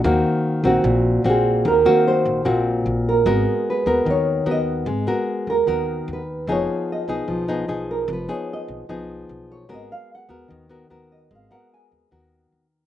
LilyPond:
<<
  \new Staff \with { instrumentName = "Nylon-string guitar" } { \time 4/4 \key ees \minor \tempo 4 = 149 r4. ges'4. aes'4 | bes'4 c''4. r4 bes'8~ | bes'4 ces''4 des''4 ees''4~ | ees''8 r4 bes'4. ces''4 |
des''4 ees''4. r4 bes'8 | ces''8 des''8 ees''4 r4. des''8 | ees''8 f''8 ges''4 r4. ees''8 | f''8 ges''8 aes''4 r2 | }
  \new Staff \with { instrumentName = "Nylon-string guitar" } { \time 4/4 \key ees \minor << { <bes c' ges'>4. <bes c' ges'>4. <bes c' ges'>4~ | <bes c' ges'>8 <bes c' ges'>4. <bes c' ges'>2 | <ces' ges' bes'>4. <ces' ges' bes'>4. <ces' ges' bes'>4 | r8 <ces' ges' bes'>4. <ces' ges' bes'>4. r8 |
<ces' ees' aes'>4. <ces' ees' aes'>4 <ces' ees' aes'>8 <ces' ees' aes'>4 | r8 <ces' ees' aes'>4. <ces' ees' aes'>2 | <ces' ges' bes'>4. <ces' ges' bes'>4 <ces' ges' bes'>8 <ces' ges' bes'>4~ | <ces' ges' bes'>8 <ces' ges' bes'>4. <ces' ges' bes'>4. r8 | } \\ { ees2 bes,2 | ees2 bes,2 | aes2 ees2 | aes2 ees2 |
f2 f2 | f2 f2 | aes2 ees2 | aes2 ees2 | } >> }
  \new Staff \with { instrumentName = "Upright bass" } { \clef bass \time 4/4 \key ees \minor ees,8 r4 bes,,8 bes,,4 bes,,4 | ees,8 r4 bes,,8 bes,,4 bes,,4 | aes,,8 r4 ees,8 ees,4 ees,4 | aes,,8 r4 ees,8 ees,4 ees,4 |
f,,8 r4 ces,8 ces,4 ces,4 | f,,8 r4 ces,8 ces,4 ces,4 | aes,,8 r4 ees,8 ees,4 ees,4 | aes,,8 r4 ees,8 ees,4 ees,4 | }
>>